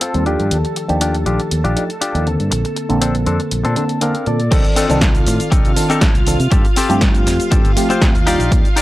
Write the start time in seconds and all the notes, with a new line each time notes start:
Already playing: A4 A5
0.01 C4 F4 A4, closed hi-hat
0.14 D#2 G3 C4 F4 A4, closed hi-hat
0.26 D#3 F3 D4 F4 G4, closed hi-hat
0.40 G2, closed hi-hat
0.51 D#2, closed hi-hat
0.64 muted clean electric guitar stroke, closed hi-hat
0.76 muted clean electric guitar stroke, closed hi-hat
0.89 D#2 D#3 F3 D4 G4, closed hi-hat
1.01 D4 F4 G4, closed hi-hat
1.15 closed hi-hat
1.26 A#1 D4 F4 G4, closed hi-hat
1.40 closed hi-hat
1.51 D#2, muted clean electric guitar stroke, closed hi-hat
1.64 A#1 D4 F4 G4, closed hi-hat
1.76 F3 D4 D#4 G4, closed hi-hat
1.90 closed hi-hat
2.01 D4 F4 G4, closed hi-hat
2.15 D#2 F3 D4 D#4 G4, closed hi-hat
2.26 D3 A#3 C4 A4, closed hi-hat, tambourine
2.40 G2, closed hi-hat
2.51 A#1, muted clean electric guitar stroke, closed hi-hat
2.65 muted clean electric guitar stroke, closed hi-hat
2.76 muted clean electric guitar stroke, closed hi-hat
2.89 A#1 D3 A#3 C4 A4, closed hi-hat
3.01 C4 D4 A4, closed hi-hat
3.15 closed hi-hat, tambourine
3.26 F2 C4 D4 A4, closed hi-hat
3.40 closed hi-hat, tambourine
3.51 A#1, muted clean electric guitar stroke, closed hi-hat
3.65 A#2 C4 D4 A4, closed hi-hat
3.76 D3 A#3 C4 A4 A5, closed hi-hat
3.89 closed hi-hat
4.01 D3 A#3 C4 D4 A4 A#4 F5, closed hi-hat
4.15 closed hi-hat
4.26 A#2 D3 A#3 C4 A4 D5, closed hi-hat
4.40 closed hi-hat
4.51 C2 D#3 C4 D4 D#4 F4 A4 D5 F5, kick, closed hi-hat, crash, cabasa
4.65 closed hi-hat, cabasa
4.76 C4 D4 D#4 A4, open hi-hat, cabasa
4.89 C2 D#3 C4 A4 D5, closed hi-hat, cabasa
5.01 kick, snare, closed hi-hat, cabasa
5.15 closed hi-hat, cabasa
5.27 A2, muted clean electric guitar stroke, open hi-hat, cabasa
5.40 closed hi-hat, cabasa
5.52 C2 C4 D4 D#4 A4, kick, closed hi-hat, cabasa
5.65 C3, closed hi-hat, cabasa
5.76 D#3 C4 D4 A4, open hi-hat, cabasa
5.90 C4 D4 D#4 A4, closed hi-hat, cabasa
6.01 D#3 C4 D4 A4, kick, snare, closed hi-hat, cabasa
6.15 C2, closed hi-hat, cabasa
6.27 D#3 C4 D4 A4, muted clean electric guitar stroke, open hi-hat, cabasa
6.39 C3, closed hi-hat, cabasa
6.51 G2 C4 F4 G4 A4, kick, closed hi-hat, cabasa
6.65 closed hi-hat, cabasa
6.76 C4 F4 G4 A4, open hi-hat, cabasa
6.89 G2 F3 A3 C4 G4, closed hi-hat, cabasa
7.01 kick, snare, closed hi-hat, cabasa
7.15 closed hi-hat, cabasa
7.26 F2, muted clean electric guitar stroke, snare, open hi-hat, cabasa
7.40 closed hi-hat, cabasa
7.52 G2 C4 F4 G4 A4, kick, closed hi-hat, cabasa
7.65 G1, closed hi-hat, cabasa
7.76 F3 A3 C4 G4, open hi-hat, cabasa
7.90 C4 F4 G4 C5, closed hi-hat, cabasa
8.01 F3 A3 C4 G4, kick, snare, closed hi-hat, cabasa
8.14 D#2, closed hi-hat, cabasa
8.27 D#3 G3 D4 D#4 F4 G4 D5, open hi-hat, cabasa
8.39 A#1, closed hi-hat, cabasa
8.52 D#2, kick, closed hi-hat, cabasa
8.65 closed hi-hat, cabasa
8.76 D#4 F4 G4 D5, open hi-hat, cabasa